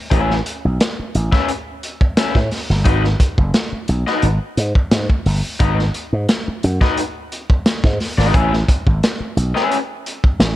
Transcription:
0.11 A1 C#4 G#4 B4 E5, kick, closed hi-hat
0.31 snare
0.46 closed hi-hat
0.65 B1
0.80 snare, closed hi-hat
0.99 muted slap bass stroke
1.15 A1, closed hi-hat
1.32 C#4 G#4 B4 E5, kick, snare
1.48 closed hi-hat
1.83 closed hi-hat
2.01 kick
2.17 C#4 G#4 B4 E5, snare, closed hi-hat
2.35 A2, kick, snare
2.51 snare, open hi-hat
2.70 G1, snare
2.85 G#1 D#4 F#4 B4 D#5, kick, closed hi-hat
3.04 snare
3.20 kick, closed hi-hat
3.38 F#1, kick
3.54 snare, closed hi-hat
3.72 muted slap bass stroke
3.88 B1, closed hi-hat
4.07 D#4 F#4 B4 D#5, snare
4.22 G#1, closed hi-hat
4.57 G#2, closed hi-hat
4.75 kick
4.91 G#2, snare, closed hi-hat
5.10 kick
5.26 G1, open hi-hat
5.60 G#1 D#4 F#4 B4 D#5, kick, closed hi-hat
5.79 snare
5.94 closed hi-hat
6.13 G#2
6.29 snare, closed hi-hat
6.48 muted slap bass stroke
6.63 F#2, closed hi-hat
6.81 D#4 F#4 B4 D#5, kick, snare
6.97 closed hi-hat
7.32 closed hi-hat
7.50 kick
7.66 snare, closed hi-hat
7.84 G#2, kick, snare
8.00 snare, open hi-hat
8.18 G#1 D#4 F#4 B4 D#5, snare
8.34 A1 C#4 G#4 B4 E5, kick, closed hi-hat
8.53 snare
8.69 kick, closed hi-hat
8.87 G#1, kick
9.03 snare, closed hi-hat
9.20 muted slap bass stroke
9.37 B1, closed hi-hat
9.55 C#4 G#4 B4 E5, snare
9.72 closed hi-hat
10.06 closed hi-hat
10.24 kick
10.39 A1, snare, closed hi-hat

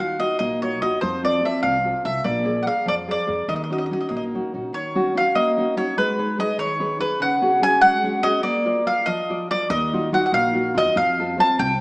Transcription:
Already playing: D#2 D#3 D#4 F4 F#4
0.00 F5
0.19 D#4 F4 F#4 D#5
0.39 A#1 A#3 D#5
0.62 D#4 F4 F#4 C#5
0.82 D#2 D#4 F4 F#4 D#5
1.01 F2 F3 C5
1.23 C4 F4 A4 D5
1.43 C4 F4 A4 E5
1.63 C2 C3 F5
1.84 C4 F4 A4
2.05 C2 C4 F4 A4 E5
2.24 A#1 A#3 D5
2.45 G#4 A#4 D5
2.63 G#4 A#4 D5 F#5
2.67 F5
2.85 F2 F3 D5
3.08 G#4 A#4 D5
3.27 F2 G#4 A#4 D5
3.48 D#2 D#3 D#5
3.56 D#5
3.64 D#5
3.70 C#4 D#4 F#4 D#5
3.78 D#5
3.86 D#5
3.91 C#4 D#4 F#4 D#5
4.01 D#5
4.09 A#1 A#3 D#5
4.17 D#5
4.34 C#4 D#4 F#4
4.54 A#1 C#4 D#4 F#4
4.73 D#3 C#5
4.95 C#4 D#4 F#4
5.15 C#4 D#4 F#4 F5
5.35 A#3 D#5
5.57 C#4 D#4 F#4
5.76 C#4 D#4 F#4 C#5
5.97 G#3 B4
6.19 D#4 G#4 B4
6.38 D#4 G#4 B4 D#5
6.58 D#3 C#5
6.80 D#4 G#4 B4
6.99 D#4 G#4 B4
7.20 C#3 F#5
7.42 C#4 F#4 G#4
7.62 C#4 F#4 G#4 G#5
7.81 G#3 F#5
8.04 C#4 F#4 G#4
8.23 C#4 F#4 G#4 D#5
8.43 A#3 D5
8.66 F4 A#4 D5
8.86 F4 A#4 D5 F5
9.06 F3 D#5
9.30 F4 A#4 D5
9.50 F4 A#4 D5
9.70 D#2 D#3 D#5
9.93 D#4 F4 F#4
10.12 D#4 F4 F#4 F#5
10.26 F#5
10.32 A#1 A#3 F5
10.53 D#4 F4 F#4
10.74 E2 D#4 F4 F#4 D#5
10.96 F2 F3 F5
11.19 C4 F4 A4
11.38 C4 F4 A4 A5
11.58 C2 C3 G5

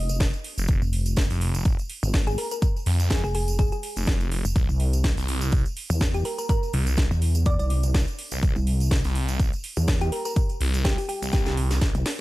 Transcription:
Already playing: F1
0.09 closed hi-hat, tambourine
0.20 kick, snare, closed hi-hat, tambourine
0.33 closed hi-hat, tambourine
0.44 open hi-hat
0.58 F1, closed hi-hat, tambourine
0.68 F1, kick, closed hi-hat, tambourine
0.82 F1, tambourine
0.93 open hi-hat
1.06 closed hi-hat, tambourine
1.16 kick, snare, closed hi-hat, tambourine
1.30 F1, open hi-hat, tambourine
1.41 open hi-hat
1.54 closed hi-hat, tambourine
1.65 kick, closed hi-hat, tambourine
1.79 closed hi-hat, tambourine
1.90 open hi-hat
2.03 G#1, closed hi-hat, tambourine
2.14 kick, snare, closed hi-hat
2.27 G#4, closed hi-hat, tambourine
2.38 A#4, open hi-hat
2.51 A#4, closed hi-hat, tambourine
2.62 kick, closed hi-hat, tambourine
2.76 tambourine
2.86 F2, open hi-hat
3.00 closed hi-hat, tambourine
3.10 G#4, kick, snare, closed hi-hat, tambourine
3.24 F1 G#4, tambourine
3.35 G#4, open hi-hat
3.48 closed hi-hat, tambourine
3.59 G#4, kick, closed hi-hat, tambourine
3.72 G#4, closed hi-hat, tambourine
3.83 open hi-hat
3.96 F1, closed hi-hat, tambourine
4.07 kick, snare, closed hi-hat, tambourine
4.21 closed hi-hat, tambourine
4.32 open hi-hat
4.45 F1, closed hi-hat, tambourine
4.56 C2, kick, closed hi-hat, tambourine
4.69 C2, tambourine
4.80 open hi-hat
4.93 closed hi-hat, tambourine
5.04 kick, snare, closed hi-hat, tambourine
5.17 C2, open hi-hat, tambourine
5.28 open hi-hat
5.41 closed hi-hat, tambourine
5.52 kick, closed hi-hat, tambourine
5.65 closed hi-hat, tambourine
5.77 open hi-hat
5.90 E2, closed hi-hat, tambourine
6.01 kick, snare, closed hi-hat
6.14 G4, closed hi-hat, tambourine
6.25 A#4, open hi-hat
6.38 A#4, closed hi-hat, tambourine
6.49 A#4, kick, closed hi-hat, tambourine
6.63 tambourine
6.73 C2, open hi-hat
6.87 closed hi-hat, tambourine
6.97 kick, snare, closed hi-hat, tambourine
7.11 E2, tambourine
7.22 open hi-hat
7.35 closed hi-hat, tambourine
7.46 D5, kick, closed hi-hat, tambourine
7.59 C2 D5, closed hi-hat, tambourine
7.70 open hi-hat
7.83 closed hi-hat, tambourine
7.94 kick, snare, closed hi-hat, tambourine
8.08 closed hi-hat, tambourine
8.19 open hi-hat
8.31 C2, closed hi-hat, tambourine
8.43 C2, kick, closed hi-hat, tambourine
8.56 C2, tambourine
8.67 open hi-hat
8.80 closed hi-hat, tambourine
8.91 kick, snare, closed hi-hat
9.04 C2, open hi-hat, tambourine
9.15 open hi-hat
9.28 closed hi-hat, tambourine
9.40 kick, closed hi-hat, tambourine
9.53 closed hi-hat, tambourine
9.64 open hi-hat
9.77 E2, closed hi-hat, tambourine
9.88 kick, snare, closed hi-hat, tambourine
10.01 G4, closed hi-hat, tambourine
10.12 A#4, open hi-hat
10.25 A#4, closed hi-hat, tambourine
10.36 kick, closed hi-hat, tambourine
10.49 closed hi-hat, tambourine
10.61 C2, open hi-hat
10.74 closed hi-hat, tambourine
10.85 G4, kick, snare, closed hi-hat, tambourine
10.98 G4, open hi-hat, tambourine
11.09 G4, open hi-hat
11.22 C2, closed hi-hat, tambourine
11.33 C2 G4, kick, snare, closed hi-hat, tambourine
11.46 G4, snare, closed hi-hat, tambourine
11.57 open hi-hat
11.71 snare, closed hi-hat, tambourine
11.81 A#1, kick, snare, closed hi-hat, tambourine
11.95 C2, closed hi-hat, tambourine
12.06 snare, open hi-hat

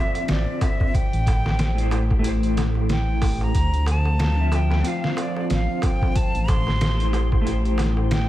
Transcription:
Already playing: D3 F3 C4 F4 C5 D5 E5
0.15 closed hi-hat, darbuka tek
0.28 A1 D5, snare, closed hi-hat, darbuka tek
0.61 E5, kick, closed hi-hat, darbuka tek
0.80 kick, darbuka tek
0.94 A3 G4 G5, kick, closed hi-hat, darbuka tek
1.13 A1, closed hi-hat
1.26 kick, closed hi-hat, darbuka tek
1.46 snare, darbuka tek
1.59 snare, closed hi-hat, darbuka tek
1.75 A3 E4 G4, closed hi-hat
1.79 C5
1.89 A3 E4 G4, closed hi-hat, darbuka tek
1.93 C5
2.10 kick, darbuka tek
2.19 A3 E4
2.24 A1 G4, closed hi-hat, darbuka tek
2.28 C5
2.43 closed hi-hat
2.57 snare, closed hi-hat, darbuka tek
2.75 darbuka tek
2.89 G5, snare, closed hi-hat, darbuka tek
3.22 kick, open hi-hat, darbuka tek
3.41 A#5, darbuka tek
3.54 D2 F3 F5, kick, closed hi-hat, darbuka tek
3.74 closed hi-hat
3.86 A5, closed hi-hat, darbuka tek
4.05 darbuka tek
4.19 snare, closed hi-hat, darbuka tek
4.36 D3 C4 F4
4.40 E5
4.51 D3 C4 F4, closed hi-hat, darbuka tek
4.55 E5 G5
4.70 snare, darbuka tek
4.80 D3 C4
4.84 F4 F5, closed hi-hat, darbuka tek
4.90 F5
5.04 snare
5.17 D5, closed hi-hat, darbuka tek
5.36 darbuka tek
5.50 A1 F5, snare, closed hi-hat, darbuka tek
5.82 G5, kick, closed hi-hat, darbuka tek
6.02 kick, darbuka tek
6.15 A3 G4 A5, kick, closed hi-hat, darbuka tek
6.35 A1, closed hi-hat
6.48 C6, kick, closed hi-hat, darbuka tek
6.67 snare, darbuka tek
6.81 snare, closed hi-hat, darbuka tek
6.97 A3 E4 G4, closed hi-hat
7.02 C5
7.11 A3 E4 G4, closed hi-hat, darbuka tek
7.16 C5
7.32 kick, darbuka tek
7.41 A3 E4
7.46 A1 G4, closed hi-hat, darbuka tek
7.51 C5
7.65 closed hi-hat
7.78 snare, closed hi-hat, darbuka tek
7.97 darbuka tek
8.11 A1 G5, snare, closed hi-hat, darbuka tek

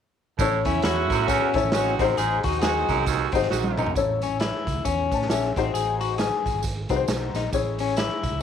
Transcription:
0.39 A1 A2 C#4 E4 A4 C#5, kick, closed hi-hat, tambourine
0.65 E2 A3 C#4 E4, kick, closed hi-hat, tambourine
0.82 E2 A3 C#4 E4 F#4, snare, closed hi-hat, tambourine
1.10 F#2 A2, kick, closed hi-hat, tambourine
1.28 E2 C#4, kick, closed hi-hat, tambourine
1.54 A1 A3 C#4 E4 A4 C#5, kick, closed hi-hat
1.58 tambourine
1.63 A1
1.72 C4 C#4 D#4 F#4, snare, closed hi-hat, tambourine
1.99 A1 F#2 C4 D#4 F#4 G#4 C5, kick, snare, closed hi-hat, tambourine
2.17 A1 G#2 G#4, closed hi-hat, tambourine
2.43 D#2 G#3 C4 D#4 F#4, kick, closed hi-hat, tambourine
2.52 closed hi-hat
2.61 C4 D#4 F#4 G#4, snare, closed hi-hat, tambourine
2.88 C2 F#2, kick, closed hi-hat, tambourine
3.06 D#2, kick, closed hi-hat, tambourine
3.32 G#1 G#3 C4 D#4 F#4 G#4, kick, closed hi-hat, tambourine
3.36 C5
3.42 snare
3.50 A#1 C4 D#4 F#4, snare, tambourine
3.64 high tom
3.77 A#1 F#2 D#4, mid tom, tambourine
3.86 floor tom
3.95 A1 C#4 E4 A4 C#5, kick, closed hi-hat, tambourine
4.22 C#4, closed hi-hat, tambourine
4.40 E4, snare, closed hi-hat, tambourine
4.67 C#2, kick, closed hi-hat, tambourine
4.75 D2
4.85 E2 C#4, kick, closed hi-hat, tambourine
5.11 A2 C#5 A5, kick, closed hi-hat, tambourine
5.22 snare
5.29 A#1 C#4 G#4 E5, snare, closed hi-hat, tambourine
5.43 closed hi-hat
5.56 A1 C4 D#4 F#4 G#4 C5, kick, snare, closed hi-hat, tambourine
5.74 A1 G#4, closed hi-hat, tambourine
6.01 F#4, closed hi-hat, tambourine
6.18 G#4, snare, closed hi-hat, tambourine
6.46 G#1, kick, closed hi-hat, tambourine
6.54 G#1
6.63 kick, closed hi-hat, tambourine
6.89 C2 C4 D#4 F#4 G#4 B4, kick, closed hi-hat, tambourine
6.96 C5
7.08 B1, snare, closed hi-hat, tambourine
7.34 A#1 D#4, snare, closed hi-hat, tambourine
7.53 A1 C#4 E4 G#4 C#5, kick, closed hi-hat, tambourine
7.79 C#4, closed hi-hat, tambourine
7.88 closed hi-hat
7.97 E4, snare, closed hi-hat, tambourine
8.23 B1, kick, closed hi-hat, tambourine
8.32 C#2

